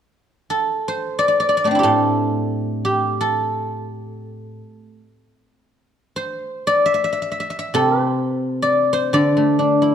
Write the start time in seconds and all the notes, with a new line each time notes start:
0.50 A4
0.88 C5
1.19 D5
1.28 D5
1.40 D5
1.49 D5
1.57 D5
1.64 A3 C4 D5
1.71 D4
1.75 E4 G4
1.83 A2 A4
2.85 G4
3.21 A4
6.16 C5
6.67 D5
6.86 E5
6.94 E5
7.04 E5
7.13 E5
7.22 E5
7.32 E5
7.40 E5
7.50 E5
7.59 E5
7.74 C3 A4
8.02 C5
8.62 D5
8.93 C5
9.13 D3 D5
9.37 A3
9.59 D4
9.82 E4
9.88 C#5